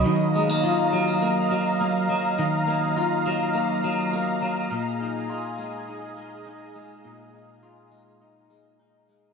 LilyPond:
<<
  \new Staff \with { instrumentName = "Analog synth pad" } { \time 4/4 \key ees \minor \tempo 4 = 103 << { <f'' bes''>1~ | <f'' bes''>1~ | <f'' bes''>1~ | <f'' bes''>1 | } \\ { <fis ees''>1~ | <fis ees''>1 | <aes' ees''>1~ | <aes' ees''>1 | } >> }
  \new Staff \with { instrumentName = "Clean electric guitar" } { \clef bass \time 4/4 \key ees \minor ees8 aes16 bes16 f'8 ges8 bes8 ges8 bes8 ges8 | ees8 bes8 f'8 ges8 bes8 ges8 bes8 ges8 | bes,8 ees'8 f'8 aes8 ees'8 aes8 ees'8 aes8 | bes,8 ees'8 f'8 aes8 ees'8 aes8 ees'8 aes8 | }
>>